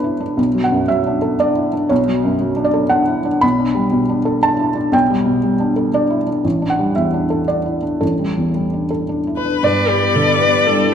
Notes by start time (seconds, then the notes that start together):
Already playing: B1 F#2 F#3 D4 A4 B4 C#5
0.04 E4
0.20 D4
0.37 B1
0.54 F#3
0.64 F#5
0.72 F#2
0.88 F#3 E5
1.07 D4
1.22 A4
1.39 D4 D5
1.55 E4
1.73 D4
1.89 B1 C#5
2.07 F#3
2.24 F#2
2.40 F#3
2.56 D4
2.64 D5
2.74 A4
2.89 D4 F#5
3.07 E4
3.25 D4
3.41 B1 B5
3.59 D4
3.75 G3
3.92 B2
4.09 D4
4.25 A4
4.42 D4 A5
4.59 E4
4.75 D4
4.92 B1 G5
5.10 G3
5.25 B2
5.43 G3
5.60 D4
5.76 A4
5.94 D4 D5
6.10 E4
6.27 D4
6.44 A1
6.62 D4
6.70 F#5
6.79 G3
6.96 E2 E5
7.14 D4
7.30 A4
7.48 D4 D5
7.66 E4
7.82 D4
8.01 A1 A4
8.19 G3
8.37 E2
8.55 G3
8.73 D4
8.90 A4
9.09 D4
9.27 E4
9.37 B4
9.45 D4
9.63 G2 B3 E4 G4 B4 D5
9.89 G4 B4
10.15 D3 A4
10.41 B4
10.67 G3 D4 A4